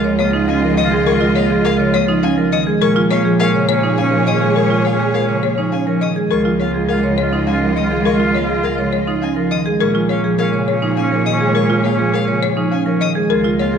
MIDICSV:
0, 0, Header, 1, 8, 480
1, 0, Start_track
1, 0, Tempo, 582524
1, 877, Time_signature, 3, 2, 24, 8
1, 11356, End_track
2, 0, Start_track
2, 0, Title_t, "Violin"
2, 0, Program_c, 0, 40
2, 158, Note_on_c, 0, 87, 89
2, 248, Note_off_c, 0, 87, 0
2, 399, Note_on_c, 0, 80, 79
2, 488, Note_off_c, 0, 80, 0
2, 637, Note_on_c, 0, 87, 106
2, 727, Note_off_c, 0, 87, 0
2, 877, Note_on_c, 0, 85, 88
2, 967, Note_off_c, 0, 85, 0
2, 1117, Note_on_c, 0, 77, 86
2, 1207, Note_off_c, 0, 77, 0
2, 1355, Note_on_c, 0, 77, 111
2, 1446, Note_off_c, 0, 77, 0
2, 1597, Note_on_c, 0, 87, 95
2, 1687, Note_off_c, 0, 87, 0
2, 1836, Note_on_c, 0, 80, 93
2, 1926, Note_off_c, 0, 80, 0
2, 2078, Note_on_c, 0, 87, 108
2, 2167, Note_off_c, 0, 87, 0
2, 2317, Note_on_c, 0, 85, 91
2, 2407, Note_off_c, 0, 85, 0
2, 2557, Note_on_c, 0, 77, 96
2, 2647, Note_off_c, 0, 77, 0
2, 2798, Note_on_c, 0, 77, 122
2, 2888, Note_off_c, 0, 77, 0
2, 3276, Note_on_c, 0, 80, 81
2, 3367, Note_off_c, 0, 80, 0
2, 3517, Note_on_c, 0, 87, 100
2, 3607, Note_off_c, 0, 87, 0
2, 3758, Note_on_c, 0, 85, 74
2, 3848, Note_off_c, 0, 85, 0
2, 3996, Note_on_c, 0, 77, 70
2, 4087, Note_off_c, 0, 77, 0
2, 4236, Note_on_c, 0, 77, 85
2, 4326, Note_off_c, 0, 77, 0
2, 4714, Note_on_c, 0, 80, 69
2, 4805, Note_off_c, 0, 80, 0
2, 4955, Note_on_c, 0, 87, 91
2, 5046, Note_off_c, 0, 87, 0
2, 5195, Note_on_c, 0, 85, 77
2, 5286, Note_off_c, 0, 85, 0
2, 5437, Note_on_c, 0, 77, 71
2, 5527, Note_off_c, 0, 77, 0
2, 5676, Note_on_c, 0, 77, 82
2, 5766, Note_off_c, 0, 77, 0
2, 6157, Note_on_c, 0, 80, 77
2, 6247, Note_off_c, 0, 80, 0
2, 6397, Note_on_c, 0, 87, 88
2, 6487, Note_off_c, 0, 87, 0
2, 6639, Note_on_c, 0, 85, 79
2, 6728, Note_off_c, 0, 85, 0
2, 6880, Note_on_c, 0, 77, 69
2, 6969, Note_off_c, 0, 77, 0
2, 7118, Note_on_c, 0, 77, 85
2, 7208, Note_off_c, 0, 77, 0
2, 7600, Note_on_c, 0, 80, 80
2, 7689, Note_off_c, 0, 80, 0
2, 7838, Note_on_c, 0, 87, 104
2, 7927, Note_off_c, 0, 87, 0
2, 8077, Note_on_c, 0, 85, 77
2, 8167, Note_off_c, 0, 85, 0
2, 8318, Note_on_c, 0, 77, 70
2, 8407, Note_off_c, 0, 77, 0
2, 8558, Note_on_c, 0, 77, 97
2, 8648, Note_off_c, 0, 77, 0
2, 9039, Note_on_c, 0, 80, 80
2, 9128, Note_off_c, 0, 80, 0
2, 9278, Note_on_c, 0, 87, 104
2, 9368, Note_off_c, 0, 87, 0
2, 9521, Note_on_c, 0, 85, 86
2, 9609, Note_off_c, 0, 85, 0
2, 9761, Note_on_c, 0, 77, 76
2, 9849, Note_off_c, 0, 77, 0
2, 10002, Note_on_c, 0, 77, 96
2, 10090, Note_off_c, 0, 77, 0
2, 10482, Note_on_c, 0, 80, 77
2, 10570, Note_off_c, 0, 80, 0
2, 10721, Note_on_c, 0, 87, 110
2, 10809, Note_off_c, 0, 87, 0
2, 11200, Note_on_c, 0, 77, 78
2, 11289, Note_off_c, 0, 77, 0
2, 11356, End_track
3, 0, Start_track
3, 0, Title_t, "Marimba"
3, 0, Program_c, 1, 12
3, 154, Note_on_c, 1, 73, 92
3, 312, Note_off_c, 1, 73, 0
3, 396, Note_on_c, 1, 77, 81
3, 552, Note_off_c, 1, 77, 0
3, 638, Note_on_c, 1, 75, 78
3, 793, Note_off_c, 1, 75, 0
3, 878, Note_on_c, 1, 70, 99
3, 1033, Note_off_c, 1, 70, 0
3, 1117, Note_on_c, 1, 73, 89
3, 1273, Note_off_c, 1, 73, 0
3, 1359, Note_on_c, 1, 70, 85
3, 1514, Note_off_c, 1, 70, 0
3, 1598, Note_on_c, 1, 73, 113
3, 1753, Note_off_c, 1, 73, 0
3, 1839, Note_on_c, 1, 77, 81
3, 1994, Note_off_c, 1, 77, 0
3, 2082, Note_on_c, 1, 75, 96
3, 2235, Note_off_c, 1, 75, 0
3, 2320, Note_on_c, 1, 70, 118
3, 2474, Note_off_c, 1, 70, 0
3, 2560, Note_on_c, 1, 73, 91
3, 2714, Note_off_c, 1, 73, 0
3, 2802, Note_on_c, 1, 70, 81
3, 2955, Note_off_c, 1, 70, 0
3, 3037, Note_on_c, 1, 73, 115
3, 3193, Note_off_c, 1, 73, 0
3, 3278, Note_on_c, 1, 77, 73
3, 3434, Note_off_c, 1, 77, 0
3, 3517, Note_on_c, 1, 75, 74
3, 3673, Note_off_c, 1, 75, 0
3, 3756, Note_on_c, 1, 70, 97
3, 3913, Note_off_c, 1, 70, 0
3, 3996, Note_on_c, 1, 73, 72
3, 4153, Note_off_c, 1, 73, 0
3, 4236, Note_on_c, 1, 70, 70
3, 4393, Note_off_c, 1, 70, 0
3, 4474, Note_on_c, 1, 73, 85
3, 4632, Note_off_c, 1, 73, 0
3, 4714, Note_on_c, 1, 77, 67
3, 4872, Note_off_c, 1, 77, 0
3, 4954, Note_on_c, 1, 75, 73
3, 5112, Note_off_c, 1, 75, 0
3, 5196, Note_on_c, 1, 70, 104
3, 5353, Note_off_c, 1, 70, 0
3, 5435, Note_on_c, 1, 73, 64
3, 5592, Note_off_c, 1, 73, 0
3, 5674, Note_on_c, 1, 70, 74
3, 5832, Note_off_c, 1, 70, 0
3, 5914, Note_on_c, 1, 73, 89
3, 6072, Note_off_c, 1, 73, 0
3, 6154, Note_on_c, 1, 77, 78
3, 6312, Note_off_c, 1, 77, 0
3, 6394, Note_on_c, 1, 75, 69
3, 6552, Note_off_c, 1, 75, 0
3, 6637, Note_on_c, 1, 70, 98
3, 6793, Note_off_c, 1, 70, 0
3, 6877, Note_on_c, 1, 73, 74
3, 7033, Note_off_c, 1, 73, 0
3, 7114, Note_on_c, 1, 70, 73
3, 7272, Note_off_c, 1, 70, 0
3, 7355, Note_on_c, 1, 73, 94
3, 7512, Note_off_c, 1, 73, 0
3, 7595, Note_on_c, 1, 77, 69
3, 7752, Note_off_c, 1, 77, 0
3, 7836, Note_on_c, 1, 75, 69
3, 7993, Note_off_c, 1, 75, 0
3, 8079, Note_on_c, 1, 70, 101
3, 8234, Note_off_c, 1, 70, 0
3, 8317, Note_on_c, 1, 73, 75
3, 8473, Note_off_c, 1, 73, 0
3, 8559, Note_on_c, 1, 70, 75
3, 8714, Note_off_c, 1, 70, 0
3, 8799, Note_on_c, 1, 73, 90
3, 8954, Note_off_c, 1, 73, 0
3, 9039, Note_on_c, 1, 77, 76
3, 9194, Note_off_c, 1, 77, 0
3, 9279, Note_on_c, 1, 75, 78
3, 9434, Note_off_c, 1, 75, 0
3, 9516, Note_on_c, 1, 70, 92
3, 9673, Note_off_c, 1, 70, 0
3, 9756, Note_on_c, 1, 73, 75
3, 9912, Note_off_c, 1, 73, 0
3, 9999, Note_on_c, 1, 70, 75
3, 10154, Note_off_c, 1, 70, 0
3, 10238, Note_on_c, 1, 73, 102
3, 10394, Note_off_c, 1, 73, 0
3, 10477, Note_on_c, 1, 77, 72
3, 10633, Note_off_c, 1, 77, 0
3, 10719, Note_on_c, 1, 75, 79
3, 10874, Note_off_c, 1, 75, 0
3, 10959, Note_on_c, 1, 70, 107
3, 11114, Note_off_c, 1, 70, 0
3, 11202, Note_on_c, 1, 73, 85
3, 11355, Note_off_c, 1, 73, 0
3, 11356, End_track
4, 0, Start_track
4, 0, Title_t, "String section"
4, 0, Program_c, 2, 48
4, 0, Note_on_c, 2, 65, 85
4, 0, Note_on_c, 2, 75, 86
4, 2165, Note_off_c, 2, 75, 0
4, 2166, Note_off_c, 2, 65, 0
4, 2313, Note_on_c, 2, 68, 96
4, 2315, Note_on_c, 2, 73, 99
4, 5042, Note_off_c, 2, 68, 0
4, 5043, Note_off_c, 2, 73, 0
4, 5195, Note_on_c, 2, 75, 72
4, 5196, Note_on_c, 2, 65, 88
4, 7923, Note_off_c, 2, 75, 0
4, 7924, Note_off_c, 2, 65, 0
4, 8078, Note_on_c, 2, 68, 75
4, 8080, Note_on_c, 2, 73, 73
4, 10804, Note_off_c, 2, 68, 0
4, 10805, Note_off_c, 2, 73, 0
4, 10959, Note_on_c, 2, 75, 93
4, 10960, Note_on_c, 2, 65, 93
4, 11356, Note_off_c, 2, 65, 0
4, 11356, Note_off_c, 2, 75, 0
4, 11356, End_track
5, 0, Start_track
5, 0, Title_t, "Marimba"
5, 0, Program_c, 3, 12
5, 34, Note_on_c, 3, 73, 82
5, 192, Note_off_c, 3, 73, 0
5, 275, Note_on_c, 3, 63, 96
5, 432, Note_off_c, 3, 63, 0
5, 515, Note_on_c, 3, 70, 83
5, 672, Note_off_c, 3, 70, 0
5, 755, Note_on_c, 3, 68, 92
5, 912, Note_off_c, 3, 68, 0
5, 995, Note_on_c, 3, 65, 117
5, 1152, Note_off_c, 3, 65, 0
5, 1236, Note_on_c, 3, 68, 81
5, 1393, Note_off_c, 3, 68, 0
5, 1478, Note_on_c, 3, 73, 86
5, 1633, Note_off_c, 3, 73, 0
5, 1718, Note_on_c, 3, 63, 105
5, 1873, Note_off_c, 3, 63, 0
5, 1958, Note_on_c, 3, 70, 81
5, 2113, Note_off_c, 3, 70, 0
5, 2198, Note_on_c, 3, 68, 87
5, 2353, Note_off_c, 3, 68, 0
5, 2438, Note_on_c, 3, 65, 116
5, 2594, Note_off_c, 3, 65, 0
5, 2677, Note_on_c, 3, 68, 79
5, 2833, Note_off_c, 3, 68, 0
5, 2920, Note_on_c, 3, 73, 79
5, 3074, Note_off_c, 3, 73, 0
5, 3159, Note_on_c, 3, 63, 85
5, 3314, Note_off_c, 3, 63, 0
5, 3398, Note_on_c, 3, 70, 74
5, 3553, Note_off_c, 3, 70, 0
5, 3638, Note_on_c, 3, 68, 87
5, 3793, Note_off_c, 3, 68, 0
5, 3876, Note_on_c, 3, 65, 90
5, 4033, Note_off_c, 3, 65, 0
5, 4116, Note_on_c, 3, 68, 69
5, 4273, Note_off_c, 3, 68, 0
5, 4356, Note_on_c, 3, 73, 68
5, 4513, Note_off_c, 3, 73, 0
5, 4596, Note_on_c, 3, 63, 78
5, 4753, Note_off_c, 3, 63, 0
5, 4836, Note_on_c, 3, 70, 65
5, 4993, Note_off_c, 3, 70, 0
5, 5077, Note_on_c, 3, 68, 75
5, 5233, Note_off_c, 3, 68, 0
5, 5316, Note_on_c, 3, 65, 93
5, 5473, Note_off_c, 3, 65, 0
5, 5555, Note_on_c, 3, 68, 64
5, 5712, Note_off_c, 3, 68, 0
5, 5796, Note_on_c, 3, 73, 81
5, 5952, Note_off_c, 3, 73, 0
5, 6038, Note_on_c, 3, 63, 78
5, 6193, Note_off_c, 3, 63, 0
5, 6277, Note_on_c, 3, 70, 72
5, 6433, Note_off_c, 3, 70, 0
5, 6517, Note_on_c, 3, 68, 70
5, 6673, Note_off_c, 3, 68, 0
5, 6755, Note_on_c, 3, 65, 87
5, 6912, Note_off_c, 3, 65, 0
5, 6996, Note_on_c, 3, 68, 66
5, 7152, Note_off_c, 3, 68, 0
5, 7235, Note_on_c, 3, 73, 69
5, 7392, Note_off_c, 3, 73, 0
5, 7477, Note_on_c, 3, 63, 94
5, 7633, Note_off_c, 3, 63, 0
5, 7716, Note_on_c, 3, 70, 72
5, 7873, Note_off_c, 3, 70, 0
5, 7957, Note_on_c, 3, 68, 86
5, 8113, Note_off_c, 3, 68, 0
5, 8197, Note_on_c, 3, 65, 94
5, 8353, Note_off_c, 3, 65, 0
5, 8438, Note_on_c, 3, 68, 76
5, 8593, Note_off_c, 3, 68, 0
5, 8678, Note_on_c, 3, 73, 72
5, 8833, Note_off_c, 3, 73, 0
5, 8918, Note_on_c, 3, 63, 92
5, 9073, Note_off_c, 3, 63, 0
5, 9157, Note_on_c, 3, 70, 68
5, 9313, Note_off_c, 3, 70, 0
5, 9398, Note_on_c, 3, 68, 81
5, 9553, Note_off_c, 3, 68, 0
5, 9638, Note_on_c, 3, 65, 99
5, 9793, Note_off_c, 3, 65, 0
5, 9877, Note_on_c, 3, 68, 70
5, 10033, Note_off_c, 3, 68, 0
5, 10116, Note_on_c, 3, 73, 81
5, 10273, Note_off_c, 3, 73, 0
5, 10357, Note_on_c, 3, 63, 92
5, 10513, Note_off_c, 3, 63, 0
5, 10596, Note_on_c, 3, 70, 77
5, 10753, Note_off_c, 3, 70, 0
5, 10838, Note_on_c, 3, 68, 84
5, 10993, Note_off_c, 3, 68, 0
5, 11077, Note_on_c, 3, 65, 100
5, 11233, Note_off_c, 3, 65, 0
5, 11317, Note_on_c, 3, 68, 70
5, 11356, Note_off_c, 3, 68, 0
5, 11356, End_track
6, 0, Start_track
6, 0, Title_t, "Oboe"
6, 0, Program_c, 4, 68
6, 0, Note_on_c, 4, 65, 81
6, 115, Note_off_c, 4, 65, 0
6, 192, Note_on_c, 4, 65, 78
6, 367, Note_off_c, 4, 65, 0
6, 442, Note_on_c, 4, 65, 85
6, 617, Note_off_c, 4, 65, 0
6, 693, Note_on_c, 4, 65, 102
6, 868, Note_off_c, 4, 65, 0
6, 946, Note_on_c, 4, 65, 88
6, 1120, Note_off_c, 4, 65, 0
6, 1197, Note_on_c, 4, 65, 88
6, 1372, Note_off_c, 4, 65, 0
6, 1448, Note_on_c, 4, 65, 89
6, 1623, Note_off_c, 4, 65, 0
6, 1694, Note_on_c, 4, 65, 69
6, 1870, Note_off_c, 4, 65, 0
6, 1948, Note_on_c, 4, 65, 50
6, 2123, Note_off_c, 4, 65, 0
6, 2319, Note_on_c, 4, 61, 54
6, 2494, Note_off_c, 4, 61, 0
6, 2565, Note_on_c, 4, 61, 72
6, 2742, Note_off_c, 4, 61, 0
6, 2819, Note_on_c, 4, 61, 88
6, 2995, Note_off_c, 4, 61, 0
6, 3065, Note_on_c, 4, 61, 81
6, 3242, Note_off_c, 4, 61, 0
6, 3316, Note_on_c, 4, 61, 88
6, 3493, Note_off_c, 4, 61, 0
6, 3573, Note_on_c, 4, 61, 82
6, 3748, Note_off_c, 4, 61, 0
6, 3819, Note_on_c, 4, 61, 83
6, 3996, Note_off_c, 4, 61, 0
6, 4071, Note_on_c, 4, 61, 83
6, 4248, Note_off_c, 4, 61, 0
6, 4323, Note_on_c, 4, 61, 72
6, 4499, Note_off_c, 4, 61, 0
6, 4575, Note_on_c, 4, 61, 50
6, 4751, Note_off_c, 4, 61, 0
6, 4825, Note_on_c, 4, 61, 41
6, 5001, Note_off_c, 4, 61, 0
6, 5198, Note_on_c, 4, 65, 42
6, 5373, Note_off_c, 4, 65, 0
6, 5452, Note_on_c, 4, 65, 61
6, 5627, Note_off_c, 4, 65, 0
6, 5700, Note_on_c, 4, 65, 74
6, 5875, Note_off_c, 4, 65, 0
6, 5953, Note_on_c, 4, 65, 69
6, 6127, Note_off_c, 4, 65, 0
6, 6199, Note_on_c, 4, 65, 84
6, 6375, Note_off_c, 4, 65, 0
6, 6455, Note_on_c, 4, 65, 79
6, 6629, Note_off_c, 4, 65, 0
6, 6705, Note_on_c, 4, 65, 84
6, 6880, Note_off_c, 4, 65, 0
6, 6955, Note_on_c, 4, 65, 81
6, 7130, Note_off_c, 4, 65, 0
6, 7206, Note_on_c, 4, 65, 75
6, 7381, Note_off_c, 4, 65, 0
6, 7459, Note_on_c, 4, 65, 53
6, 7633, Note_off_c, 4, 65, 0
6, 7706, Note_on_c, 4, 65, 41
6, 7882, Note_off_c, 4, 65, 0
6, 8076, Note_on_c, 4, 61, 43
6, 8252, Note_off_c, 4, 61, 0
6, 8324, Note_on_c, 4, 61, 58
6, 8501, Note_off_c, 4, 61, 0
6, 8578, Note_on_c, 4, 61, 72
6, 8754, Note_off_c, 4, 61, 0
6, 8827, Note_on_c, 4, 61, 67
6, 9003, Note_off_c, 4, 61, 0
6, 9080, Note_on_c, 4, 61, 91
6, 9256, Note_off_c, 4, 61, 0
6, 9333, Note_on_c, 4, 61, 98
6, 9508, Note_off_c, 4, 61, 0
6, 9584, Note_on_c, 4, 61, 81
6, 9759, Note_off_c, 4, 61, 0
6, 9838, Note_on_c, 4, 61, 85
6, 10012, Note_off_c, 4, 61, 0
6, 10085, Note_on_c, 4, 61, 73
6, 10260, Note_off_c, 4, 61, 0
6, 10339, Note_on_c, 4, 61, 54
6, 10513, Note_off_c, 4, 61, 0
6, 10587, Note_on_c, 4, 61, 48
6, 10763, Note_off_c, 4, 61, 0
6, 10957, Note_on_c, 4, 65, 45
6, 11133, Note_off_c, 4, 65, 0
6, 11212, Note_on_c, 4, 65, 59
6, 11356, Note_off_c, 4, 65, 0
6, 11356, End_track
7, 0, Start_track
7, 0, Title_t, "Marimba"
7, 0, Program_c, 5, 12
7, 38, Note_on_c, 5, 49, 86
7, 159, Note_on_c, 5, 58, 92
7, 194, Note_off_c, 5, 49, 0
7, 280, Note_on_c, 5, 53, 81
7, 314, Note_off_c, 5, 58, 0
7, 401, Note_on_c, 5, 61, 85
7, 434, Note_off_c, 5, 53, 0
7, 517, Note_on_c, 5, 53, 110
7, 554, Note_off_c, 5, 61, 0
7, 637, Note_on_c, 5, 51, 74
7, 673, Note_off_c, 5, 53, 0
7, 756, Note_on_c, 5, 56, 78
7, 793, Note_off_c, 5, 51, 0
7, 867, Note_off_c, 5, 56, 0
7, 877, Note_on_c, 5, 56, 86
7, 997, Note_on_c, 5, 53, 96
7, 1033, Note_off_c, 5, 56, 0
7, 1116, Note_on_c, 5, 58, 83
7, 1153, Note_off_c, 5, 53, 0
7, 1235, Note_on_c, 5, 53, 109
7, 1273, Note_off_c, 5, 58, 0
7, 1354, Note_on_c, 5, 56, 86
7, 1392, Note_off_c, 5, 53, 0
7, 1472, Note_on_c, 5, 49, 97
7, 1512, Note_off_c, 5, 56, 0
7, 1597, Note_on_c, 5, 58, 95
7, 1631, Note_off_c, 5, 49, 0
7, 1717, Note_on_c, 5, 53, 103
7, 1753, Note_off_c, 5, 58, 0
7, 1836, Note_on_c, 5, 61, 103
7, 1873, Note_off_c, 5, 53, 0
7, 1954, Note_on_c, 5, 53, 118
7, 1993, Note_off_c, 5, 61, 0
7, 2075, Note_on_c, 5, 51, 84
7, 2112, Note_off_c, 5, 53, 0
7, 2195, Note_on_c, 5, 56, 92
7, 2232, Note_off_c, 5, 51, 0
7, 2307, Note_off_c, 5, 56, 0
7, 2317, Note_on_c, 5, 56, 100
7, 2436, Note_on_c, 5, 53, 90
7, 2473, Note_off_c, 5, 56, 0
7, 2557, Note_on_c, 5, 58, 104
7, 2593, Note_off_c, 5, 53, 0
7, 2674, Note_on_c, 5, 53, 110
7, 2713, Note_off_c, 5, 58, 0
7, 2797, Note_on_c, 5, 56, 84
7, 2832, Note_off_c, 5, 53, 0
7, 2918, Note_on_c, 5, 49, 92
7, 2953, Note_off_c, 5, 56, 0
7, 3039, Note_on_c, 5, 58, 97
7, 3074, Note_off_c, 5, 49, 0
7, 3159, Note_on_c, 5, 53, 95
7, 3194, Note_off_c, 5, 58, 0
7, 3280, Note_on_c, 5, 61, 81
7, 3314, Note_off_c, 5, 53, 0
7, 3396, Note_on_c, 5, 53, 117
7, 3434, Note_off_c, 5, 61, 0
7, 3519, Note_on_c, 5, 51, 78
7, 3553, Note_off_c, 5, 53, 0
7, 3639, Note_on_c, 5, 56, 78
7, 3674, Note_off_c, 5, 51, 0
7, 3750, Note_off_c, 5, 56, 0
7, 3760, Note_on_c, 5, 56, 85
7, 3879, Note_on_c, 5, 53, 75
7, 3914, Note_off_c, 5, 56, 0
7, 3999, Note_on_c, 5, 58, 76
7, 4034, Note_off_c, 5, 53, 0
7, 4119, Note_on_c, 5, 53, 78
7, 4154, Note_off_c, 5, 58, 0
7, 4239, Note_on_c, 5, 56, 71
7, 4274, Note_off_c, 5, 53, 0
7, 4361, Note_on_c, 5, 49, 80
7, 4394, Note_off_c, 5, 56, 0
7, 4483, Note_on_c, 5, 58, 89
7, 4514, Note_off_c, 5, 49, 0
7, 4602, Note_on_c, 5, 53, 70
7, 4635, Note_off_c, 5, 58, 0
7, 4722, Note_on_c, 5, 61, 75
7, 4755, Note_off_c, 5, 53, 0
7, 4840, Note_on_c, 5, 53, 101
7, 4875, Note_off_c, 5, 61, 0
7, 4960, Note_on_c, 5, 51, 68
7, 4994, Note_off_c, 5, 53, 0
7, 5082, Note_on_c, 5, 56, 70
7, 5114, Note_off_c, 5, 51, 0
7, 5192, Note_off_c, 5, 56, 0
7, 5202, Note_on_c, 5, 56, 72
7, 5319, Note_on_c, 5, 53, 72
7, 5355, Note_off_c, 5, 56, 0
7, 5443, Note_on_c, 5, 58, 72
7, 5474, Note_off_c, 5, 53, 0
7, 5562, Note_on_c, 5, 53, 86
7, 5595, Note_off_c, 5, 58, 0
7, 5683, Note_on_c, 5, 56, 67
7, 5715, Note_off_c, 5, 53, 0
7, 5802, Note_on_c, 5, 49, 81
7, 5835, Note_off_c, 5, 56, 0
7, 5955, Note_off_c, 5, 49, 0
7, 6039, Note_on_c, 5, 53, 75
7, 6158, Note_on_c, 5, 61, 78
7, 6194, Note_off_c, 5, 53, 0
7, 6279, Note_on_c, 5, 53, 105
7, 6313, Note_off_c, 5, 61, 0
7, 6398, Note_on_c, 5, 51, 71
7, 6434, Note_off_c, 5, 53, 0
7, 6521, Note_on_c, 5, 56, 80
7, 6553, Note_off_c, 5, 51, 0
7, 6629, Note_off_c, 5, 56, 0
7, 6639, Note_on_c, 5, 56, 86
7, 6760, Note_on_c, 5, 53, 80
7, 6794, Note_off_c, 5, 56, 0
7, 6878, Note_on_c, 5, 58, 71
7, 6914, Note_off_c, 5, 53, 0
7, 6999, Note_on_c, 5, 53, 83
7, 7033, Note_off_c, 5, 58, 0
7, 7120, Note_on_c, 5, 56, 68
7, 7154, Note_off_c, 5, 53, 0
7, 7239, Note_on_c, 5, 49, 80
7, 7274, Note_off_c, 5, 56, 0
7, 7394, Note_off_c, 5, 49, 0
7, 7477, Note_on_c, 5, 53, 77
7, 7599, Note_on_c, 5, 61, 75
7, 7633, Note_off_c, 5, 53, 0
7, 7718, Note_on_c, 5, 53, 95
7, 7754, Note_off_c, 5, 61, 0
7, 7841, Note_on_c, 5, 51, 79
7, 7873, Note_off_c, 5, 53, 0
7, 7961, Note_on_c, 5, 56, 76
7, 7994, Note_off_c, 5, 51, 0
7, 8068, Note_off_c, 5, 56, 0
7, 8078, Note_on_c, 5, 56, 87
7, 8199, Note_on_c, 5, 53, 80
7, 8233, Note_off_c, 5, 56, 0
7, 8318, Note_on_c, 5, 58, 80
7, 8354, Note_off_c, 5, 53, 0
7, 8438, Note_on_c, 5, 53, 93
7, 8473, Note_off_c, 5, 58, 0
7, 8559, Note_on_c, 5, 56, 71
7, 8593, Note_off_c, 5, 53, 0
7, 8676, Note_on_c, 5, 49, 81
7, 8714, Note_off_c, 5, 56, 0
7, 8833, Note_off_c, 5, 49, 0
7, 8916, Note_on_c, 5, 53, 70
7, 9037, Note_on_c, 5, 61, 76
7, 9073, Note_off_c, 5, 53, 0
7, 9155, Note_on_c, 5, 53, 94
7, 9193, Note_off_c, 5, 61, 0
7, 9277, Note_on_c, 5, 51, 81
7, 9312, Note_off_c, 5, 53, 0
7, 9399, Note_on_c, 5, 56, 79
7, 9433, Note_off_c, 5, 51, 0
7, 9509, Note_off_c, 5, 56, 0
7, 9519, Note_on_c, 5, 56, 95
7, 9640, Note_on_c, 5, 53, 80
7, 9674, Note_off_c, 5, 56, 0
7, 9761, Note_on_c, 5, 58, 87
7, 9794, Note_off_c, 5, 53, 0
7, 9879, Note_on_c, 5, 53, 93
7, 9914, Note_off_c, 5, 58, 0
7, 10000, Note_on_c, 5, 56, 70
7, 10034, Note_off_c, 5, 53, 0
7, 10119, Note_on_c, 5, 49, 81
7, 10154, Note_off_c, 5, 56, 0
7, 10274, Note_off_c, 5, 49, 0
7, 10357, Note_on_c, 5, 53, 80
7, 10481, Note_on_c, 5, 61, 83
7, 10513, Note_off_c, 5, 53, 0
7, 10597, Note_on_c, 5, 53, 110
7, 10634, Note_off_c, 5, 61, 0
7, 10718, Note_on_c, 5, 51, 73
7, 10753, Note_off_c, 5, 53, 0
7, 10839, Note_on_c, 5, 56, 81
7, 10873, Note_off_c, 5, 51, 0
7, 10950, Note_off_c, 5, 56, 0
7, 10960, Note_on_c, 5, 56, 76
7, 11079, Note_on_c, 5, 53, 81
7, 11114, Note_off_c, 5, 56, 0
7, 11198, Note_on_c, 5, 58, 91
7, 11234, Note_off_c, 5, 53, 0
7, 11318, Note_on_c, 5, 53, 101
7, 11353, Note_off_c, 5, 58, 0
7, 11356, Note_off_c, 5, 53, 0
7, 11356, End_track
8, 0, Start_track
8, 0, Title_t, "Cello"
8, 0, Program_c, 6, 42
8, 0, Note_on_c, 6, 37, 85
8, 2189, Note_off_c, 6, 37, 0
8, 2319, Note_on_c, 6, 46, 81
8, 5069, Note_off_c, 6, 46, 0
8, 5198, Note_on_c, 6, 37, 80
8, 7948, Note_off_c, 6, 37, 0
8, 8078, Note_on_c, 6, 46, 78
8, 10828, Note_off_c, 6, 46, 0
8, 10958, Note_on_c, 6, 37, 73
8, 11356, Note_off_c, 6, 37, 0
8, 11356, End_track
0, 0, End_of_file